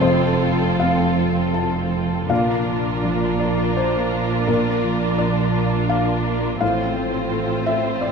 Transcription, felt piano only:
0, 0, Header, 1, 2, 480
1, 0, Start_track
1, 0, Key_signature, -1, "major"
1, 0, Tempo, 767263
1, 14, Time_signature, 3, 2, 24, 8
1, 975, Tempo, 735294
1, 2415, Tempo, 710059
1, 5358, End_track
2, 0, Start_track
2, 0, Title_t, "Felt piano"
2, 0, Program_c, 0, 0
2, 0, Control_c, 0, 64, 127
2, 0, Note_on_c, 0, 48, 39
2, 9, Note_on_c, 0, 72, 75
2, 13, Note_on_c, 0, 41, 57
2, 26, Control_c, 0, 64, 0
2, 145, Control_c, 0, 64, 127
2, 475, Note_off_c, 0, 72, 0
2, 498, Note_on_c, 0, 77, 78
2, 509, Note_on_c, 0, 60, 37
2, 596, Note_off_c, 0, 48, 0
2, 947, Note_off_c, 0, 77, 0
2, 964, Note_on_c, 0, 81, 69
2, 1427, Note_off_c, 0, 81, 0
2, 1432, Note_off_c, 0, 41, 0
2, 1455, Note_on_c, 0, 46, 57
2, 1457, Note_on_c, 0, 77, 76
2, 1462, Note_off_c, 0, 60, 0
2, 1469, Control_c, 0, 64, 0
2, 1574, Control_c, 0, 64, 127
2, 1945, Note_on_c, 0, 53, 38
2, 2148, Note_off_c, 0, 77, 0
2, 2174, Note_on_c, 0, 74, 66
2, 2397, Note_off_c, 0, 74, 0
2, 2416, Note_on_c, 0, 72, 67
2, 2870, Note_off_c, 0, 46, 0
2, 2873, Note_off_c, 0, 72, 0
2, 2893, Note_on_c, 0, 70, 69
2, 2900, Note_on_c, 0, 46, 59
2, 2911, Control_c, 0, 64, 0
2, 3032, Control_c, 0, 64, 127
2, 3349, Note_off_c, 0, 70, 0
2, 3375, Note_on_c, 0, 74, 69
2, 3387, Note_on_c, 0, 62, 35
2, 3481, Note_off_c, 0, 53, 0
2, 3831, Note_off_c, 0, 74, 0
2, 3855, Note_on_c, 0, 77, 74
2, 4313, Note_off_c, 0, 77, 0
2, 4317, Note_off_c, 0, 46, 0
2, 4336, Note_on_c, 0, 77, 71
2, 4341, Note_on_c, 0, 45, 54
2, 4347, Note_off_c, 0, 62, 0
2, 4356, Control_c, 0, 64, 0
2, 4453, Control_c, 0, 64, 127
2, 4826, Note_on_c, 0, 57, 36
2, 5028, Note_off_c, 0, 77, 0
2, 5051, Note_on_c, 0, 76, 79
2, 5274, Note_off_c, 0, 76, 0
2, 5287, Note_on_c, 0, 74, 68
2, 5358, Note_off_c, 0, 45, 0
2, 5358, Note_off_c, 0, 57, 0
2, 5358, Note_off_c, 0, 74, 0
2, 5358, End_track
0, 0, End_of_file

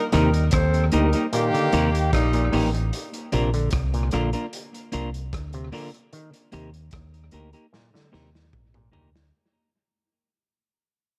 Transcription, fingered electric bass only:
0, 0, Header, 1, 2, 480
1, 0, Start_track
1, 0, Tempo, 800000
1, 1756, Time_signature, 4, 2, 24, 8
1, 6712, End_track
2, 0, Start_track
2, 0, Title_t, "Fingered electric bass"
2, 0, Program_c, 0, 33
2, 86, Note_on_c, 0, 39, 86
2, 301, Note_off_c, 0, 39, 0
2, 320, Note_on_c, 0, 39, 85
2, 538, Note_off_c, 0, 39, 0
2, 565, Note_on_c, 0, 38, 99
2, 677, Note_off_c, 0, 38, 0
2, 1042, Note_on_c, 0, 39, 104
2, 1258, Note_off_c, 0, 39, 0
2, 1281, Note_on_c, 0, 34, 92
2, 1498, Note_off_c, 0, 34, 0
2, 1524, Note_on_c, 0, 33, 92
2, 1739, Note_off_c, 0, 33, 0
2, 2004, Note_on_c, 0, 34, 99
2, 2220, Note_off_c, 0, 34, 0
2, 2240, Note_on_c, 0, 36, 83
2, 2457, Note_off_c, 0, 36, 0
2, 2486, Note_on_c, 0, 34, 90
2, 2597, Note_off_c, 0, 34, 0
2, 2966, Note_on_c, 0, 36, 83
2, 3181, Note_off_c, 0, 36, 0
2, 3202, Note_on_c, 0, 38, 77
2, 3419, Note_off_c, 0, 38, 0
2, 3926, Note_on_c, 0, 39, 99
2, 4141, Note_off_c, 0, 39, 0
2, 4161, Note_on_c, 0, 39, 90
2, 4378, Note_off_c, 0, 39, 0
2, 4404, Note_on_c, 0, 38, 96
2, 4516, Note_off_c, 0, 38, 0
2, 4886, Note_on_c, 0, 39, 90
2, 5101, Note_off_c, 0, 39, 0
2, 5123, Note_on_c, 0, 34, 88
2, 5339, Note_off_c, 0, 34, 0
2, 5366, Note_on_c, 0, 38, 94
2, 5581, Note_off_c, 0, 38, 0
2, 6712, End_track
0, 0, End_of_file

